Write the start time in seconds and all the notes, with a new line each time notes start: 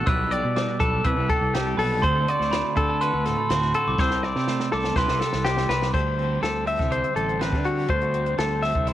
0.06 B1 B2 G3 E4 G4 B4 E6, kick, closed hi-hat
0.31 G4 D5, closed hi-hat
0.44 B2
0.56 G3 D6, snare, closed hi-hat
0.80 B1 A4 B4, kick, closed hi-hat
1.05 C2 C3 E4 B4 E6, kick, closed hi-hat
1.17 C2
1.29 G4 A4, kick, closed hi-hat
1.41 C2
1.54 G3 G4, snare, closed hi-hat
1.77 B1 A4 B4, open hi-hat
2.01 D2 D3 C4 C5 C6, kick, closed hi-hat
2.28 F#4 D5, closed hi-hat
2.40 D2, snare
2.51 A3 B5, snare, closed hi-hat
2.77 D3 G4 A4, kick, closed hi-hat
2.89 A4 A5
3.01 F#4 B4 C6, closed hi-hat
3.13 D2
3.25 A2 A4, snare, closed hi-hat
3.38 B5
3.49 D2 C4 F#4 C6, snare, closed hi-hat
3.62 snare
3.74 F#4 A4, closed hi-hat
3.87 C2 D6
3.98 C2 C3 C4 C5 E6, kick, snare
4.11 snare
4.23 E4 D5, snare
4.35 C3 G4, snare
4.47 A3, snare
4.60 snare
4.72 C2 A4 D6, snare
4.84 snare
4.95 C2 C3 G3 E4 G4 B4 C6, kick, snare
5.09 C2, snare
5.20 G4 A4, snare
5.33 C2, snare
5.45 G3 G4, snare
5.57 snare
5.69 C2 G4 B4, snare
5.82 snare
5.93 D2 D3 A4 C5, kick, crash
6.06 closed hi-hat
6.18 C4, closed hi-hat
6.41 D2 G3 A4, snare, closed hi-hat
6.66 C4 E5, open hi-hat
6.79 C2, kick, snare, closed hi-hat
6.91 G4 C5, closed hi-hat
7.04 closed hi-hat
7.15 A1 G3 A4, closed hi-hat
7.29 closed hi-hat
7.39 C4 B4, snare, closed hi-hat
7.53 D3, kick, snare, closed hi-hat
7.64 G3 F#4, open hi-hat
7.88 D2 D3 A4 C5, kick, closed hi-hat
8.01 closed hi-hat
8.14 C4, closed hi-hat
8.26 closed hi-hat
8.38 D2 G3 A4, snare, closed hi-hat
8.63 C4 E5, snare, open hi-hat
8.75 C2, kick, closed hi-hat
8.86 E4 C5, closed hi-hat